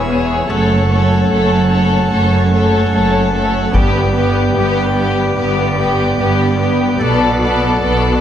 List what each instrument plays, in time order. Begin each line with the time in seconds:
Already playing: double bass section E1, cello section E2, pipe organ B3 G#4 C#5 E5
0.08 viola section B3, violin section G#4 C#5
0.48 double bass section F#1, cello section F#2, viola section A3, pipe organ C#4 A4 C#5 F#5, violin section A4 C#5
0.89 viola section A3, violin section A4 C#5
1.29 double bass section F#1, cello section F#2, viola section A3, violin section A4 C#5
1.70 viola section A3, violin section A4 C#5
2.10 double bass section F#1, cello section F#2, viola section A3, violin section A4 C#5
2.52 viola section A3, violin section A4 C#5
2.92 double bass section F#1, cello section F#2, viola section A3, violin section A4 C#5
3.33 viola section A3, violin section A4 C#5
3.73 double bass section G1, cello section G2, viola section B3, pipe organ B3 G4 D5 G5, violin section G4 B4, taiko
4.14 viola section B3, violin section G4 B4
4.54 double bass section G1, cello section G2, viola section B3, violin section G4 B4
4.94 viola section B3, violin section G4 B4
5.36 double bass section G1, cello section G2, viola section B3, violin section G4 B4
5.78 viola section B3, violin section G4 B4
6.19 double bass section G1, cello section G2, viola section B3, violin section G4 B4
6.59 viola section B3, violin section G4 B4
6.99 double bass section B1, cello section B2, pipe organ B3 A4 D5 F#5, viola section B3, violin section A4 D5
7.41 viola section B3, violin section A4 D5
7.82 double bass section B1, cello section B2, viola section B3, violin section A4 D5